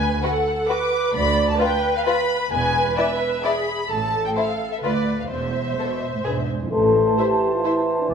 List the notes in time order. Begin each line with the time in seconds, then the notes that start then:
Already playing: D2 B4 G#5
0.22 F#4 A4 B4 F#5
0.69 F#4 B4 D6
1.14 D2 D5 B5
1.50 A5
1.60 F4 B4 G5
1.96 F5
2.06 F4 B4 B5
2.52 E1 E2 B4 G#5
2.97 E4 D5 E5
3.43 E4 G#4 D5 B5
3.89 A1 A2 A4 A5
4.26 G5
4.36 E4 C5 F5
4.72 E5
4.82 D2 F4 B4 D5
5.19 F5
5.30 E1 E2 C5 E5
5.77 B2 A4 C5
6.14 A2
6.24 E1 G#2 D4 G#4 B4
6.61 F2 E4
6.70 A1 A2 E3 A4 C5 A5
7.17 E4 G4 C5 E5
7.54 F4
7.64 E4 C5 E5
7.99 D4
8.10 E1 E2 E4 D5 G#5